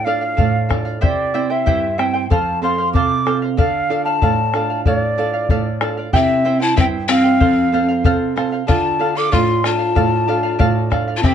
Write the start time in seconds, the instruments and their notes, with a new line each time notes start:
Already playing: nylon-string guitar A2
0.05 nylon-string guitar D4 F4 A4, charango A4 D5 F5, quena F5
0.21 charango D5 F5
0.37 nylon-string guitar A2, charango A4 D5 F5, bombo low
0.69 nylon-string guitar D4 F4 A4, charango A4 D5 F5, bombo rim, bombo low
0.85 charango D5 F5
1.01 nylon-string guitar C3, charango E4 G4 C5 E5 G5, quena D5, bombo low
1.34 nylon-string guitar C4 E4 G4, charango E4 C5 E5 G5
1.50 charango E4 C5 G5, quena E5
1.66 nylon-string guitar G2, charango E4 G4 C5 E5 G5, bombo low
1.98 nylon-string guitar C4 E4 G4, charango E4 C5 E5 G5, quena G5, bombo rim
2.14 charango E4 C5 G5
2.30 nylon-string guitar F2, charango A4 C5 F5, quena A5, bombo low
2.62 nylon-string guitar C4 F4 A4, charango A4 C5 F5, quena C6
2.78 charango C5 F5
2.93 nylon-string guitar C3, charango A4 C5 F5, quena D6, bombo low
3.26 nylon-string guitar C4 F4 A4, charango A4 C5 F5, bombo rim
3.42 charango C5 F5
3.57 nylon-string guitar D3, charango A4 D5 F5, quena F5, bombo low
3.89 nylon-string guitar D4 F4 A4, charango A4 D5 F5
4.05 charango D5 F5, quena A5
4.22 nylon-string guitar A2, charango A4 D5 F5, bombo low
4.53 nylon-string guitar D4 F4 A4, charango A4 D5 F5, bombo rim
4.70 charango D5 F5
4.86 nylon-string guitar A2, charango A4 D5 F5, quena C#5, bombo low
4.97 quena D5
5.18 nylon-string guitar D4 F4 A4, charango A4 D5 F5
5.34 charango D5 F5
5.49 nylon-string guitar A2, charango A4 D5 F5, bombo low
5.81 nylon-string guitar D4 F4 A4, charango A4 D5 F5, bombo rim
5.97 charango D5 F5
6.13 nylon-string guitar C3, pan flute C4, charango E4 G4 C5 E5 G5, quena E5, bombo low
6.45 nylon-string guitar C4 E4 G4, charango E4 C5 E5 G5
6.60 pan flute E4, charango E4 C5 G5, quena A5
6.76 nylon-string guitar G2, pan flute C4, charango E4 G4 C5 E5 G5, bombo low
6.80 quena G5
7.08 nylon-string guitar E3 C4 G4, pan flute C4, charango E4 C5 E5 G5, quena F5, bombo rim
7.24 charango E4 C5 G5
7.40 nylon-string guitar F2, charango A4 C5 F5, bombo low
7.72 nylon-string guitar C4 F4 A4, charango A4 C5 F5
7.89 charango C5 F5
8.04 nylon-string guitar C3, charango A4 C5 F5, bombo low
8.36 nylon-string guitar C4 F4 A4, charango A4 C5 F5, bombo rim
8.52 charango C5 F5
8.67 nylon-string guitar D3, pan flute F4, charango A4 D5 F5, quena A5, bombo low
8.99 nylon-string guitar D4 F4 A4, charango A4 D5 F5
9.15 pan flute A4, charango D5 F5, quena D6
9.32 nylon-string guitar A2, pan flute F4, charango A4 D5 F5, quena C6, bombo low
9.63 nylon-string guitar D4 F4 A4, pan flute F4, charango A4 D5 F5, quena A5, bombo rim
9.79 charango D5 F5
9.95 nylon-string guitar A2, charango A4 D5 F5, bombo low
10.28 nylon-string guitar D4 F4 A4, charango A4 D5 F5
10.43 charango D5 F5
10.59 nylon-string guitar A2, charango A4 D5 F5, bombo low
10.90 nylon-string guitar D4 F4 A4, charango A4 D5 F5, bombo rim, bombo low
11.08 charango D5 F5
11.17 pan flute F4, quena A5
11.23 nylon-string guitar C3, pan flute C4, charango E4 G4 C5 E5 G5, quena G5, bombo low